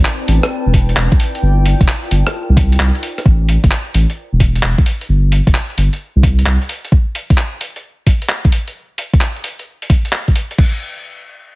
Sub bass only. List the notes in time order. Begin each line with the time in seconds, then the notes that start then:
0.28 A1
0.66 E1
0.97 E1
1.42 G1
1.81 F1
2.11 G1
2.49 C2
2.80 C2
3.26 A1
3.64 G1
3.94 A1
4.33 E1
4.63 E1
5.09 G1
5.47 F1
5.78 G1
6.16 C2
6.46 C2